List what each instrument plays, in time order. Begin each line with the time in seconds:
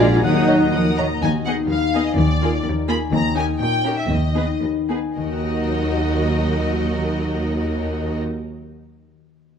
Already playing: double bass section A#1, cello section A#2, harp A#2 D4 F4, french horn section G#3 D4, violin section D5 F5, flute section F5, oboe G#5
0.00 violin section A#5
0.06 harp G#4 A#4
0.15 viola section F4
0.21 double bass section D#2, harp D#3, cello section D#3, french horn section F#3 D#4, viola section D#4, violin section A#4 F#5 D#6, flute section D#5, oboe F#5
0.39 harp A#4
0.47 bassoon F#3, clarinet D#5, violin section D#5 A#5
0.55 harp F#4
0.73 cello section F3, harp A#3, violin section A#4 F#5 D#6
0.90 harp F#4
0.98 cello section D#3, bassoon F#3, clarinet D#5, violin section D#5 A#5
1.06 harp A#4
1.22 double bass section D#2, cello section D#2, harp D#3, violin section G#5
1.45 viola section B3 D#4, harp D#4, violin section G#4 D#5 F#5
1.69 cello section D#2, harp B4, violin section F5
1.94 viola section B3 D#4, violin section G#4 D#5, harp G#5
2.05 violin section D#5
2.16 double bass section D#2, cello section D#2, harp D#3, violin section D5
2.41 viola section A#3 F4, harp F4, violin section G#4 A#4
2.65 cello section D#2, harp A#4
2.88 viola section A#3 F4, violin section G#4 A#4 B5, harp G#5
3.11 double bass section D#2, cello section D#2, harp D#3, violin section A#5
3.35 viola section C#4 D#4, harp D#4, violin section G4 A#4 G#5
3.59 cello section A#2, harp C#5, violin section G5
3.84 viola section C#4 D#4, violin section G4 A#4, harp G5
3.97 violin section E5
4.09 cello section D#2, double bass section D#2, harp D#3, violin section D#5
4.35 viola section B3 D#4, harp D#4, violin section G#4 B4
4.61 cello section D#2, harp B4
4.89 viola section B3 D#4, violin section G#4 B4, harp G#5
5.16 double bass section D#2, cello section D#2, harp D#3, viola section F#3 D#4, violin section F#4 A#4 D#5
5.24 harp D#4
5.31 harp F#4
5.38 harp A#4
5.45 harp F#5